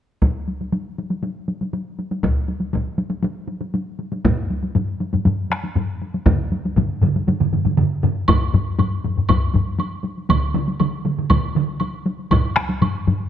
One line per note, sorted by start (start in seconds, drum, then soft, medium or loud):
0.22 taiko medium
0.22 taiko high soft
0.48 taiko high soft
0.61 taiko high soft
0.73 taiko high medium
0.98 taiko high soft
1.10 taiko high soft
1.23 taiko high soft
1.48 taiko high soft
1.61 taiko high soft
1.73 taiko high soft
1.99 taiko high soft
2.11 taiko high soft
2.23 taiko medium
2.23 taiko high medium
2.48 taiko high soft
2.60 taiko high soft
2.73 taiko medium
2.73 taiko high medium
2.98 taiko high soft
3.10 taiko high medium
3.23 taiko high medium
3.48 taiko high soft
3.61 taiko high soft
3.74 taiko high soft
3.99 taiko high soft
4.12 taiko high soft
4.25 taiko medium
4.25 taiko low-mid medium
4.25 taiko high medium
4.50 taiko high soft
4.63 taiko high soft
4.75 taiko low-mid medium
4.75 taiko high medium
5.00 taiko high soft
5.13 taiko low-mid medium
5.13 taiko high medium
5.25 taiko low-mid medium
5.25 taiko high medium
5.50 taiko rim medium
5.50 taiko high soft
5.64 taiko high soft
5.76 taiko low-mid medium
5.76 taiko high medium
6.02 taiko high soft
6.14 taiko high soft
6.26 taiko medium
6.26 taiko low-mid medium
6.26 taiko mid medium
6.26 taiko high medium
6.52 taiko high soft
6.65 taiko high soft
6.76 taiko medium
6.76 taiko low-mid medium
6.76 taiko mid medium
6.76 taiko high medium
7.02 taiko low-mid medium
7.02 taiko mid medium
7.02 taiko high soft
7.16 taiko high soft
7.27 taiko low-mid medium
7.27 taiko mid medium
7.27 taiko high medium
7.40 taiko low-mid medium
7.40 taiko mid medium
7.53 taiko low-mid medium
7.53 taiko mid medium
7.53 taiko high soft
7.65 taiko low-mid medium
7.65 taiko mid medium
7.65 taiko high soft
7.77 taiko low-mid medium
7.77 taiko mid medium
8.03 taiko low-mid medium
8.03 taiko mid medium
8.28 taiko loud
8.28 taiko low-mid medium
8.28 taiko high medium
8.28 high woodblock medium
8.41 taiko high soft
8.53 taiko low-mid loud
8.53 taiko high soft
8.79 taiko low-mid medium
8.79 taiko high medium
8.79 high woodblock soft
8.91 taiko high soft
9.04 taiko low-mid medium
9.04 taiko high medium
9.17 taiko low-mid medium
9.17 taiko high soft
9.29 taiko medium
9.29 taiko low-mid medium
9.29 taiko high medium
9.29 high woodblock soft
9.42 taiko high soft
9.54 taiko low-mid medium
9.54 taiko high medium
9.67 taiko high soft
9.79 taiko high medium
9.79 high woodblock soft
9.92 taiko high soft
10.04 taiko high soft
10.17 taiko high soft
10.29 taiko medium
10.29 taiko mid medium
10.29 taiko high medium
10.29 high woodblock medium
10.42 taiko high soft
10.54 taiko mid loud
10.54 taiko high soft
10.68 taiko high soft
10.80 taiko mid medium
10.80 taiko high medium
10.80 high woodblock soft
10.93 taiko high soft
11.05 taiko mid medium
11.05 taiko high soft
11.18 taiko mid medium
11.18 taiko high soft
11.30 taiko medium
11.30 taiko mid medium
11.30 taiko high medium
11.30 high woodblock soft
11.44 taiko high soft
11.55 taiko mid medium
11.55 taiko high soft
11.68 taiko high soft
11.80 taiko high medium
11.80 high woodblock soft
11.93 taiko high soft
12.06 taiko high medium
12.19 taiko high soft
12.31 taiko medium
12.31 taiko low-mid medium
12.31 taiko high medium
12.31 high woodblock soft
12.44 taiko high soft
12.56 taiko rim medium
12.56 taiko high medium
12.70 taiko high soft
12.81 taiko low-mid medium
12.81 taiko high medium
12.81 high woodblock soft
12.95 taiko high soft
13.07 taiko low-mid medium
13.07 taiko high medium
13.20 taiko high soft